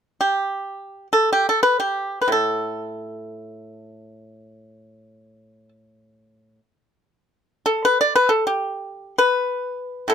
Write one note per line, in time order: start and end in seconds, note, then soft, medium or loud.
0.21 1.07 G4 soft
1.13 1.31 A4 medium
1.33 1.47 G4 medium
1.49 1.61 A4 medium
1.63 1.77 B4 medium
1.80 2.20 G4 medium
2.22 2.31 B4 soft
2.28 6.59 A2 soft
2.32 5.69 A4 medium
7.66 7.85 A4 medium
7.85 8.00 B4 medium
8.01 8.15 D5 medium
8.16 8.29 B4 medium
8.29 8.45 A4 medium
8.47 9.15 G4 medium
9.18 10.07 B4 medium
10.08 10.14 A2 soft
10.08 10.14 A4 medium